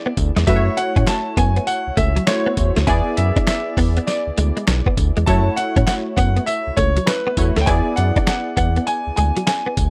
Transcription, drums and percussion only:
0.17 kick medium
0.17 closed hi-hat medium
0.17 tambourine medium
0.37 snare medium
0.37 closed hi-hat medium
0.47 kick loud
0.47 closed hi-hat medium
0.47 tambourine medium
0.77 closed hi-hat medium
0.96 kick loud
0.96 closed hi-hat medium
1.07 snare loud
1.07 clap medium
1.07 closed hi-hat medium
1.07 tambourine medium
1.37 kick loud
1.37 closed hi-hat medium
1.37 tambourine medium
1.56 closed hi-hat medium
1.67 closed hi-hat medium
1.67 tambourine medium
1.97 kick loud
1.97 closed hi-hat medium
1.97 tambourine medium
2.17 closed hi-hat medium
2.27 snare loud
2.27 clap medium
2.27 closed hi-hat medium
2.27 tambourine medium
2.57 kick medium
2.57 closed hi-hat medium
2.57 tambourine medium
2.76 snare medium
2.76 closed hi-hat medium
2.87 kick loud
2.87 closed hi-hat medium
2.87 tambourine medium
3.17 closed hi-hat medium
3.36 kick loud
3.36 closed hi-hat medium
3.47 snare loud
3.47 clap medium
3.47 closed hi-hat medium
3.47 tambourine medium
3.77 kick loud
3.77 open hi-hat medium
3.77 tambourine medium
3.97 closed hi-hat soft
4.07 snare medium
4.07 closed hi-hat medium
4.07 tambourine medium
4.37 closed hi-hat medium
4.37 tambourine medium
4.57 closed hi-hat medium
4.67 snare loud
4.67 clap medium
4.67 closed hi-hat medium
4.67 tambourine loud
4.86 kick loud
4.97 kick medium
4.97 closed hi-hat medium
4.97 tambourine medium
5.17 closed hi-hat medium
5.27 kick loud
5.27 closed hi-hat medium
5.27 tambourine medium
5.57 closed hi-hat medium
5.76 kick loud
5.76 closed hi-hat medium
5.87 snare loud
5.87 clap medium
5.87 closed hi-hat medium
5.87 tambourine medium
6.17 kick loud
6.17 closed hi-hat medium
6.17 tambourine medium
6.37 closed hi-hat soft
6.47 closed hi-hat medium
6.47 tambourine medium
6.77 kick loud
6.77 closed hi-hat medium
6.77 tambourine medium
6.97 closed hi-hat medium
7.07 snare loud
7.07 clap medium
7.07 closed hi-hat medium
7.07 tambourine loud
7.37 kick medium
7.37 closed hi-hat medium
7.37 tambourine medium
7.56 snare medium
7.56 closed hi-hat medium
7.67 kick loud
7.67 closed hi-hat medium
7.67 tambourine medium
7.97 closed hi-hat medium
8.16 kick loud
8.16 closed hi-hat medium
8.27 snare loud
8.27 clap medium
8.27 closed hi-hat medium
8.27 tambourine medium
8.57 kick loud
8.57 closed hi-hat medium
8.57 tambourine medium
8.76 closed hi-hat soft
8.87 closed hi-hat medium
8.87 tambourine medium
9.17 closed hi-hat medium
9.17 tambourine medium
9.37 closed hi-hat medium
9.47 snare loud
9.47 clap medium
9.47 closed hi-hat medium
9.47 tambourine medium
9.77 kick loud
9.77 closed hi-hat medium
9.77 tambourine medium

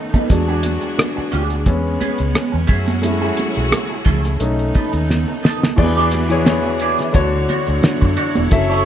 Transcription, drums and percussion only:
0.14 kick medium
0.14 closed hi-hat soft
0.14 high conga medium
0.30 kick loud
0.30 closed hi-hat medium
0.30 muted conga medium
0.63 closed hi-hat medium
0.63 muted conga soft
0.82 closed hi-hat soft
0.99 cross-stick loud
0.99 closed hi-hat medium
0.99 high conga medium
1.32 closed hi-hat medium
1.50 closed hi-hat medium
1.66 kick medium
1.66 closed hi-hat medium
2.01 closed hi-hat medium
2.01 muted conga soft
2.18 closed hi-hat medium
2.35 cross-stick loud
2.35 closed hi-hat medium
2.35 high conga medium
2.67 kick loud
2.67 closed hi-hat medium
2.88 closed hi-hat soft
2.88 high conga medium
3.03 closed hi-hat medium
3.03 muted conga medium
3.22 closed hi-hat soft
3.37 closed hi-hat medium
3.37 muted conga medium
3.55 closed hi-hat soft
3.72 cross-stick loud
3.72 closed hi-hat loud
3.72 high conga medium
4.05 kick medium
4.05 closed hi-hat medium
4.05 low conga medium
4.24 cross-stick soft
4.24 closed hi-hat medium
4.40 closed hi-hat medium
4.59 closed hi-hat soft
4.75 kick medium
4.75 closed hi-hat medium
4.75 muted conga soft
4.93 closed hi-hat medium
5.10 snare medium
5.10 high conga medium
5.45 snare medium
5.63 snare medium
5.63 high conga medium
5.78 kick loud
5.78 crash loud
5.78 muted conga medium
6.11 closed hi-hat loud
6.11 muted conga medium
6.30 closed hi-hat soft
6.46 snare loud
6.46 closed hi-hat loud
6.46 high conga medium
6.79 closed hi-hat medium
6.99 snare soft
6.99 closed hi-hat medium
7.14 kick medium
7.14 closed hi-hat medium
7.14 muted conga soft
7.49 closed hi-hat medium
7.49 muted conga medium
7.67 closed hi-hat medium
7.83 snare loud
7.83 closed hi-hat medium
7.83 high conga medium
8.02 kick medium
8.17 closed hi-hat medium
8.35 closed hi-hat soft
8.35 high conga medium
8.51 kick loud
8.51 closed hi-hat loud
8.51 muted conga medium
8.71 closed hi-hat soft

